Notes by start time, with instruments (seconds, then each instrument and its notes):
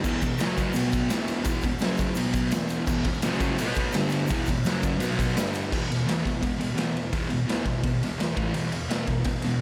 0.04 distorted electric guitar E2 B2 E3, kick, crash, shaker
0.21 distorted electric guitar E2 B2, kick, ride, shaker
0.31 shaker
0.38 distorted electric guitar F#2 C#3 F#3, snare, ride, shaker
0.50 snare
0.57 kick, ride, shaker
0.73 distorted electric guitar B2 F#3 B3, ride, shaker
0.92 kick, ride, shaker
1.10 distorted electric guitar E2 B2 E3, snare, ride, shaker
1.20 shaker
1.27 ride, shaker
1.45 distorted electric guitar E2 B2 E3, kick, ride, shaker
1.62 distorted electric guitar E2 B2, kick, ride, shaker
1.70 shaker
1.79 distorted electric guitar F#2 C#3, snare, ride, shaker
1.83 distorted electric guitar F#3
1.92 snare
1.97 kick, ride, shaker
2.15 distorted electric guitar B2 F#3 B3, ride, shaker
2.25 shaker
2.33 kick, ride, shaker
2.51 distorted electric guitar E2 B2 E3, snare, ride, shaker
2.69 ride, shaker
2.87 distorted electric guitar E2 B2 E3, kick, crash, shaker
3.04 distorted electric guitar E2 B2, kick, ride
3.14 shaker
3.22 distorted electric guitar F#2 C#3 F#3, snare, ride, shaker
3.32 snare, shaker
3.40 kick, ride, shaker
3.58 distorted electric guitar B2 F#3 B3, ride, shaker
3.75 kick, ride, shaker
3.92 distorted electric guitar G2 D3, snare, ride, shaker
3.96 distorted electric guitar G3
4.01 shaker
4.09 ride, shaker
4.27 distorted electric guitar E2, kick, ride, shaker
4.31 distorted electric guitar B2 E3
4.46 distorted electric guitar E2 B2, kick, ride, shaker
4.56 shaker
4.64 distorted electric guitar F#2 C#3 F#3, snare, ride, shaker
4.82 kick, ride, shaker
4.99 distorted electric guitar B2 F#3 B3, ride, shaker
5.19 kick, ride, shaker
5.36 distorted electric guitar G2 D3 G3, snare, ride, shaker
5.46 shaker
5.54 ride, shaker
5.72 distorted electric guitar E2 B2 E3, kick, crash
5.90 distorted electric guitar E2 B2, snare, ride
6.06 distorted electric guitar E2 B2 E3, snare, ride
6.24 distorted electric guitar E2 B2, kick, ride
6.41 distorted electric guitar E2 B2, kick, ride
6.59 distorted electric guitar E2 B2, ride
6.75 distorted electric guitar E2 B2 E3, snare, ride
6.95 distorted electric guitar E2 B2, ride
7.13 distorted electric guitar E2 B2 E3, kick, ride
7.29 distorted electric guitar E2 B2, ride
7.46 distorted electric guitar E2 B2 E3, ride
7.50 snare
7.65 distorted electric guitar E2 B2, kick, ride
7.83 distorted electric guitar E2 B2, kick, ride
8.03 distorted electric guitar E2 B2, ride
8.17 distorted electric guitar E2 B2 E3, snare, ride
8.34 distorted electric guitar A2 E3 A3, kick, ride
8.54 distorted electric guitar E2 B2 E3, ride
8.72 distorted electric guitar E2 B2, ride
8.88 distorted electric guitar E2 B2 E3, snare, ride
9.07 distorted electric guitar E2 B2, kick, ride
9.24 distorted electric guitar E2 B2, kick, ride
9.42 distorted electric guitar E2 B2, ride